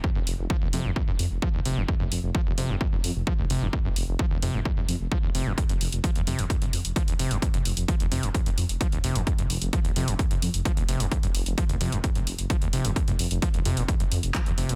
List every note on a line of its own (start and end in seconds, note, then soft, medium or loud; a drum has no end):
0.04 0.10 F2 medium
0.04 kick loud
0.15 0.22 F1 medium
0.15 0.19 F#2 loud
0.27 0.34 F1 loud
0.27 open hi-hat loud
0.39 0.46 F1 medium
0.50 0.56 F3 loud
0.50 kick loud
0.62 0.69 F1 medium
0.62 0.68 D#2 medium
0.73 0.80 F2 loud
0.73 0.86 C3 medium
0.73 open hi-hat medium
0.85 0.92 F1 medium
0.85 0.91 F2 loud
0.96 1.03 F2 medium
0.96 kick loud
1.08 1.15 F1 medium
1.08 1.12 F#2 loud
1.19 1.26 F2 loud
1.19 open hi-hat loud
1.31 1.38 F1 medium
1.42 1.49 F3 loud
1.42 kick loud
1.54 1.61 F1 medium
1.54 1.60 D#2 medium
1.65 1.72 F1 loud
1.65 1.78 C3 medium
1.65 open hi-hat medium
1.77 1.84 F1 medium
1.77 1.83 F2 loud
1.88 1.95 F2 medium
1.88 kick loud
2.00 2.07 F1 medium
2.00 2.04 F#2 loud
2.12 2.19 F1 loud
2.12 open hi-hat loud
2.23 2.30 F1 medium
2.35 2.41 F3 loud
2.35 kick loud
2.46 2.53 F1 medium
2.46 2.53 D#2 medium
2.58 2.65 F2 loud
2.58 2.71 C3 medium
2.58 open hi-hat medium
2.69 2.76 F1 medium
2.69 2.76 F2 loud
2.81 2.87 F2 medium
2.81 kick loud
2.92 2.99 F1 medium
2.92 2.96 F#2 loud
3.04 3.11 F2 loud
3.04 open hi-hat loud
3.16 3.22 F1 medium
3.27 3.33 F3 loud
3.27 kick loud
3.38 3.45 F1 medium
3.38 3.45 D#2 medium
3.50 3.57 F1 loud
3.50 3.63 C3 medium
3.50 open hi-hat medium
3.62 3.69 F1 medium
3.62 3.68 F2 loud
3.73 3.80 F2 medium
3.73 kick loud
3.85 3.92 F1 medium
3.85 3.89 F#2 loud
3.96 4.03 F1 loud
3.96 open hi-hat loud
4.08 4.15 F1 medium
4.19 4.26 F3 loud
4.19 kick loud
4.31 4.38 F1 medium
4.31 4.37 D#2 medium
4.42 4.49 F2 loud
4.42 4.56 C3 medium
4.42 open hi-hat medium
4.54 4.61 F1 medium
4.54 4.60 F2 loud
4.65 4.72 F2 medium
4.65 kick loud
4.77 4.84 F1 medium
4.77 4.81 F#2 loud
4.88 4.95 F2 loud
4.88 open hi-hat loud
5.00 5.07 F1 medium
5.12 5.18 F3 loud
5.12 kick loud
5.23 5.30 F1 medium
5.23 5.30 D#2 medium
5.35 5.42 F1 loud
5.35 5.48 C3 medium
5.35 open hi-hat medium
5.46 5.53 F1 medium
5.46 5.53 F2 loud
5.58 5.64 F2 medium
5.58 kick loud
5.58 closed hi-hat medium
5.69 5.76 F1 medium
5.69 5.73 F#2 loud
5.69 closed hi-hat medium
5.81 5.88 F1 loud
5.81 open hi-hat loud
5.92 5.99 F1 medium
5.92 closed hi-hat medium
6.04 6.10 F3 loud
6.04 kick loud
6.04 closed hi-hat medium
6.15 6.22 F1 medium
6.15 6.22 D#2 medium
6.15 closed hi-hat medium
6.27 6.34 F2 loud
6.27 6.40 C3 medium
6.27 open hi-hat medium
6.38 6.45 F1 medium
6.38 6.45 F2 loud
6.38 closed hi-hat medium
6.50 6.56 F2 medium
6.50 kick loud
6.50 closed hi-hat medium
6.62 6.69 F1 medium
6.62 6.65 F#2 loud
6.62 closed hi-hat medium
6.73 6.80 F2 loud
6.73 open hi-hat loud
6.84 6.92 F1 medium
6.84 closed hi-hat medium
6.96 7.03 F3 loud
6.96 kick loud
6.96 closed hi-hat medium
7.08 7.15 F1 medium
7.08 7.14 D#2 medium
7.08 closed hi-hat medium
7.19 7.26 F1 loud
7.19 7.32 C3 medium
7.19 open hi-hat medium
7.31 7.38 F1 medium
7.31 7.37 F2 loud
7.31 closed hi-hat medium
7.42 7.49 F2 medium
7.42 kick loud
7.42 closed hi-hat medium
7.54 7.61 F1 medium
7.54 7.58 F#2 loud
7.54 closed hi-hat medium
7.65 7.72 F1 loud
7.65 open hi-hat loud
7.77 7.84 F1 medium
7.77 closed hi-hat medium
7.88 7.95 F3 loud
7.88 kick loud
7.88 closed hi-hat medium
8.00 8.07 F1 medium
8.00 8.06 D#2 medium
8.00 closed hi-hat medium
8.12 8.19 F2 loud
8.12 8.25 C3 medium
8.12 open hi-hat loud
8.23 8.30 F1 medium
8.23 8.30 F2 loud
8.23 closed hi-hat medium
8.35 8.41 F2 medium
8.35 kick loud
8.35 closed hi-hat medium
8.46 8.53 F1 medium
8.46 8.50 F#2 loud
8.46 closed hi-hat medium
8.58 8.65 F2 loud
8.58 open hi-hat loud
8.69 8.76 F1 medium
8.69 closed hi-hat medium
8.81 8.87 F3 loud
8.81 kick loud
8.81 closed hi-hat medium
8.92 8.99 F1 medium
8.92 8.99 D#2 medium
8.92 closed hi-hat medium
9.04 9.11 F1 loud
9.04 9.17 C3 medium
9.04 open hi-hat medium
9.15 9.22 F1 medium
9.15 9.22 F2 loud
9.15 closed hi-hat medium
9.27 9.33 F2 medium
9.27 kick loud
9.27 closed hi-hat medium
9.38 9.45 F1 medium
9.38 9.42 F#2 loud
9.38 closed hi-hat medium
9.50 9.57 F1 loud
9.50 open hi-hat loud
9.62 9.69 F1 medium
9.62 closed hi-hat medium
9.73 9.80 F3 loud
9.73 kick loud
9.73 closed hi-hat medium
9.85 9.92 F1 medium
9.85 9.91 D#2 medium
9.85 closed hi-hat medium
9.96 10.03 F2 loud
9.96 10.09 C3 medium
9.96 open hi-hat loud
10.08 10.15 F1 medium
10.08 10.14 F2 loud
10.08 closed hi-hat medium
10.19 10.26 F2 medium
10.19 kick loud
10.19 closed hi-hat medium
10.31 10.38 F1 medium
10.31 10.35 F#2 loud
10.31 closed hi-hat medium
10.42 10.49 F2 medium
10.42 open hi-hat loud
10.54 10.61 F1 medium
10.54 closed hi-hat medium
10.65 10.72 F3 loud
10.65 kick loud
10.65 closed hi-hat medium
10.77 10.84 F1 medium
10.77 10.83 D#2 medium
10.77 closed hi-hat medium
10.89 10.96 F1 loud
10.89 11.02 C3 medium
10.89 open hi-hat loud
11.00 11.07 F1 medium
11.00 11.06 F2 loud
11.00 closed hi-hat medium
11.12 11.18 F2 medium
11.12 kick loud
11.12 closed hi-hat medium
11.23 11.30 F1 medium
11.23 11.27 F#2 loud
11.23 closed hi-hat medium
11.35 11.42 F1 loud
11.35 open hi-hat loud
11.46 11.53 F1 medium
11.46 closed hi-hat medium
11.58 11.64 F3 loud
11.58 kick loud
11.58 closed hi-hat medium
11.69 11.76 F1 medium
11.69 11.76 D#2 medium
11.69 closed hi-hat medium
11.81 11.88 F2 loud
11.81 11.94 C3 medium
11.81 open hi-hat medium
11.92 11.99 F1 medium
11.92 11.99 F2 loud
11.92 closed hi-hat soft
12.04 12.10 F2 medium
12.04 kick loud
12.04 closed hi-hat medium
12.15 12.23 F1 medium
12.15 12.19 F#2 loud
12.15 closed hi-hat medium
12.27 12.34 F1 loud
12.27 open hi-hat loud
12.39 12.46 F#1 medium
12.39 closed hi-hat soft
12.50 12.56 F3 loud
12.50 kick loud
12.50 closed hi-hat medium
12.62 12.69 F1 medium
12.62 12.68 D#2 medium
12.62 closed hi-hat medium
12.73 12.80 F1 loud
12.73 12.86 C3 medium
12.73 open hi-hat medium
12.85 12.92 F1 medium
12.85 12.91 F2 loud
12.85 closed hi-hat medium
12.96 13.03 F2 medium
12.96 kick loud
12.96 closed hi-hat medium
13.08 13.15 F1 medium
13.08 13.12 F#2 loud
13.08 closed hi-hat soft
13.19 13.26 F1 loud
13.19 open hi-hat loud
13.31 13.38 F1 medium
13.31 closed hi-hat medium
13.42 13.49 F3 loud
13.42 kick loud
13.42 closed hi-hat medium
13.54 13.61 F1 medium
13.54 13.60 D#2 medium
13.54 closed hi-hat medium
13.65 13.72 F2 loud
13.65 13.78 C3 medium
13.65 open hi-hat medium
13.77 13.84 F1 medium
13.77 13.83 A#2 medium
13.77 closed hi-hat soft
13.88 13.95 F2 medium
13.88 kick loud
13.88 closed hi-hat medium
14.00 14.07 F1 medium
14.00 14.04 F#2 loud
14.00 closed hi-hat soft
14.12 14.19 F2 loud
14.12 open hi-hat loud
14.23 14.30 F1 medium
14.23 closed hi-hat soft
14.35 14.41 F3 loud
14.35 kick loud
14.35 clap loud
14.35 closed hi-hat medium
14.46 14.53 F1 medium
14.46 14.53 D#2 medium
14.46 closed hi-hat medium
14.58 14.65 F1 loud
14.58 14.71 C3 medium
14.58 open hi-hat medium
14.69 14.75 F1 medium
14.69 14.75 A#2 medium
14.69 closed hi-hat medium